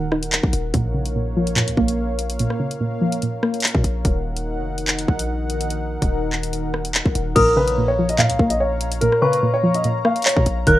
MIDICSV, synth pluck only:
0, 0, Header, 1, 2, 480
1, 0, Start_track
1, 0, Key_signature, -5, "minor"
1, 0, Tempo, 413793
1, 856, Time_signature, 4, 2, 24, 8
1, 12521, End_track
2, 0, Start_track
2, 0, Title_t, "Synth pluck"
2, 0, Program_c, 0, 84
2, 0, Note_on_c, 0, 51, 74
2, 0, Note_on_c, 0, 54, 81
2, 0, Note_on_c, 0, 58, 84
2, 135, Note_on_c, 0, 63, 90
2, 380, Note_off_c, 0, 54, 0
2, 856, Note_off_c, 0, 51, 0
2, 856, Note_off_c, 0, 63, 0
2, 858, Note_off_c, 0, 58, 0
2, 859, Note_on_c, 0, 46, 103
2, 1093, Note_on_c, 0, 49, 75
2, 1330, Note_off_c, 0, 46, 0
2, 1344, Note_on_c, 0, 46, 80
2, 1583, Note_on_c, 0, 53, 91
2, 1797, Note_off_c, 0, 46, 0
2, 1811, Note_on_c, 0, 46, 92
2, 2061, Note_on_c, 0, 58, 91
2, 2295, Note_off_c, 0, 49, 0
2, 2772, Note_off_c, 0, 46, 0
2, 2780, Note_off_c, 0, 53, 0
2, 2786, Note_on_c, 0, 46, 96
2, 3013, Note_on_c, 0, 49, 84
2, 3242, Note_off_c, 0, 46, 0
2, 3255, Note_on_c, 0, 46, 91
2, 3259, Note_off_c, 0, 58, 0
2, 3495, Note_on_c, 0, 53, 84
2, 3733, Note_off_c, 0, 46, 0
2, 3746, Note_on_c, 0, 46, 84
2, 3976, Note_on_c, 0, 58, 86
2, 4215, Note_off_c, 0, 49, 0
2, 4696, Note_off_c, 0, 53, 0
2, 4696, Note_off_c, 0, 58, 0
2, 4701, Note_off_c, 0, 46, 0
2, 8539, Note_on_c, 0, 46, 101
2, 8772, Note_on_c, 0, 49, 78
2, 9010, Note_off_c, 0, 46, 0
2, 9024, Note_on_c, 0, 46, 83
2, 9265, Note_on_c, 0, 53, 89
2, 9480, Note_off_c, 0, 46, 0
2, 9493, Note_on_c, 0, 46, 88
2, 9741, Note_on_c, 0, 58, 92
2, 9974, Note_off_c, 0, 49, 0
2, 10454, Note_off_c, 0, 46, 0
2, 10461, Note_off_c, 0, 53, 0
2, 10467, Note_on_c, 0, 46, 101
2, 10695, Note_on_c, 0, 49, 85
2, 10922, Note_off_c, 0, 46, 0
2, 10936, Note_on_c, 0, 46, 88
2, 10939, Note_off_c, 0, 58, 0
2, 11174, Note_on_c, 0, 53, 88
2, 11412, Note_off_c, 0, 46, 0
2, 11425, Note_on_c, 0, 46, 86
2, 11655, Note_on_c, 0, 58, 85
2, 11896, Note_off_c, 0, 49, 0
2, 12375, Note_off_c, 0, 53, 0
2, 12376, Note_off_c, 0, 58, 0
2, 12381, Note_off_c, 0, 46, 0
2, 12387, Note_on_c, 0, 51, 97
2, 12521, Note_off_c, 0, 51, 0
2, 12521, End_track
0, 0, End_of_file